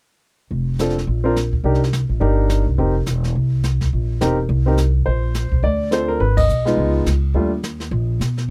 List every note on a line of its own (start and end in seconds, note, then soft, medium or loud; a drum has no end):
0.51 1.05 F1 medium
0.51 brush sweep soft
0.79 0.94 C4 soft
0.79 0.95 D4 soft
0.79 0.95 F4 soft
0.79 0.95 A4 medium
0.79 snare soft
0.79 hi-hat pedal medium
0.89 snare soft
0.98 snare soft
1.07 1.61 A#1 medium
1.07 brush sweep soft
1.24 1.34 C4 medium
1.24 1.35 D4 medium
1.24 1.35 F4 medium
1.24 1.35 A#4 medium
1.36 snare soft
1.36 hi-hat pedal soft
1.53 kick soft
1.64 2.06 C2 medium
1.64 1.79 D4 soft
1.64 1.79 D#4 soft
1.64 1.80 G4 medium
1.64 1.80 A#4 medium
1.64 brush sweep soft
1.75 snare soft
1.84 snare soft
1.93 snare medium
1.93 hi-hat pedal medium
2.09 2.20 A#1 medium
2.20 2.63 G1 medium
2.20 2.63 D4 medium
2.20 2.63 D#4 medium
2.20 2.63 G4 medium
2.20 2.63 A#4 medium
2.20 brush sweep soft
2.49 snare medium
2.49 hi-hat pedal soft
2.66 2.77 C2 medium
2.78 3.05 F1 medium
2.78 2.93 C4 soft
2.78 2.94 D#4 soft
2.78 2.94 G4 soft
2.78 2.94 A#4 soft
2.78 brush sweep soft
3.06 3.33 E1 medium
3.06 snare soft
3.06 hi-hat pedal soft
3.24 snare soft
3.35 3.89 C2 medium
3.35 brush sweep soft
3.63 snare soft
3.63 hi-hat pedal soft
3.81 kick soft
3.81 snare soft
3.92 4.19 A#1 medium
3.92 brush sweep soft
4.21 4.47 E1 medium
4.21 4.36 C4 medium
4.21 4.36 D#4 medium
4.21 4.36 G4 medium
4.21 4.37 A#4 medium
4.21 snare medium
4.21 hi-hat pedal soft
4.49 5.03 C2 medium
4.49 brush sweep soft
4.66 4.76 C4 medium
4.66 4.77 D#4 medium
4.66 4.77 G4 soft
4.66 4.78 A#4 medium
4.77 snare soft
4.77 hi-hat pedal soft
5.06 5.48 A#1 medium
5.06 5.59 C5 medium
5.06 brush sweep soft
5.34 snare medium
5.34 hi-hat pedal medium
5.52 5.62 B1 medium
5.52 kick soft
5.63 6.17 D2 medium
5.63 5.90 D5 medium
5.63 brush sweep soft
5.91 6.20 C4 soft
5.91 6.20 D4 soft
5.91 6.21 F4 soft
5.91 6.21 A4 medium
5.91 6.10 C5 medium
5.91 snare medium
5.91 hi-hat pedal medium
6.08 6.19 A#4 medium
6.20 6.47 G#1 medium
6.20 6.36 B4 medium
6.20 brush sweep soft
6.37 6.90 D#5 loud
6.37 kick medium
6.37 ride medium
6.49 6.75 B1 medium
6.49 hi-hat pedal medium
6.65 7.03 G#3 medium
6.65 7.04 B3 medium
6.65 7.04 D#4 medium
6.65 7.04 F4 medium
6.65 snare soft
6.77 7.04 C#2 medium
6.77 brush sweep soft
7.06 7.32 C#2 medium
7.06 snare medium
7.06 hi-hat pedal medium
7.34 7.88 D#2 medium
7.34 7.50 G3 medium
7.34 7.50 A3 soft
7.34 7.50 D4 soft
7.34 7.50 F4 medium
7.34 brush sweep soft
7.63 snare medium
7.63 hi-hat pedal soft
7.80 snare soft
7.91 8.18 A#1 medium
7.91 brush sweep soft
8.20 8.46 B2 medium
8.20 snare soft
8.20 hi-hat pedal soft
8.38 snare soft